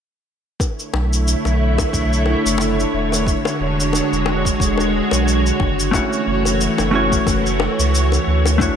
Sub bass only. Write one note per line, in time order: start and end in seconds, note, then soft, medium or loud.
0.94 1.35 B1 medium
1.45 1.85 B1 loud
1.93 2.35 B1 medium
2.46 2.85 F#1 medium
2.94 3.35 E1 medium
3.60 4.02 E1 medium
4.12 4.52 E1 medium
4.60 5.02 E1 medium
5.12 5.52 B1 medium
5.60 6.02 F#1 medium
6.27 6.68 F#1 medium
6.79 7.19 F#1 loud
7.27 7.68 F#1 medium
7.79 8.19 C#2 medium
8.27 8.69 D2 medium